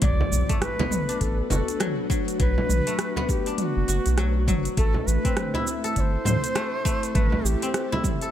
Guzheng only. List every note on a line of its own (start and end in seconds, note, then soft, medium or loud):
0.00 1.79 F#3 medium
0.00 0.49 A3 medium
0.00 0.85 C4 medium
0.00 1.02 E4 medium
0.00 0.91 A4 medium
0.49 2.87 A3 medium
0.79 3.17 B3 loud
1.09 3.46 D4 medium
1.50 3.88 F#4 medium
1.80 2.09 F#3 medium
2.10 2.38 F#3 loud
2.40 4.17 F#3 medium
2.87 4.77 A3 medium
3.17 5.31 B3 loud
3.47 6.27 D4 medium
3.88 6.32 F#4 medium
4.18 4.47 F#3 medium
4.48 4.83 F#3 loud
4.77 6.55 A3 medium
5.25 7.62 C4 medium
5.55 7.92 E4 loud
5.84 8.04 A4 medium
6.26 8.23 C5 medium
6.55 6.85 A3 medium
6.85 7.14 A3 loud
7.15 8.31 A3 medium
7.63 8.31 C4 medium
7.92 8.31 E4 loud
8.22 8.31 A4 medium